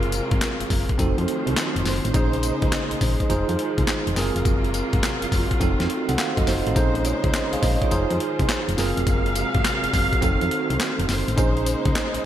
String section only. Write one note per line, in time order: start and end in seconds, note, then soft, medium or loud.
0.00 0.97 C3 medium
0.00 0.97 F#3 medium
0.00 0.96 G#3 medium
0.00 0.97 A#3 medium
0.00 0.97 F4 medium
0.99 2.13 D#3 medium
0.99 2.13 F3 medium
0.99 2.13 F#3 medium
0.99 2.13 A3 medium
0.99 4.13 C5 medium
2.14 3.29 C#3 medium
2.14 5.57 G#3 medium
2.14 3.29 A#3 medium
2.14 3.29 D#4 medium
3.30 4.16 D#3 medium
3.30 4.16 F3 medium
3.30 6.73 F4 medium
4.16 5.59 C3 medium
4.16 6.73 F#3 medium
4.16 5.59 A#3 medium
5.60 6.75 D#3 medium
5.60 6.75 A3 medium
5.60 8.75 C5 medium
6.76 7.90 C#3 medium
6.76 7.90 G#3 medium
6.76 7.90 A#3 medium
6.76 7.90 D#4 medium
7.91 8.77 D#3 medium
7.91 8.77 F3 medium
7.91 8.77 G#3 medium
7.91 8.77 F4 medium
8.78 10.21 C3 medium
8.78 11.35 F#3 medium
8.78 10.21 G#3 medium
8.78 10.21 A#3 medium
8.78 11.35 F5 medium
10.22 11.36 D#3 medium
10.22 11.36 A3 medium
10.22 12.25 C5 medium
11.37 12.25 C#3 medium
11.37 12.25 G#3 medium
11.37 12.25 A#3 medium
11.37 12.25 D#4 medium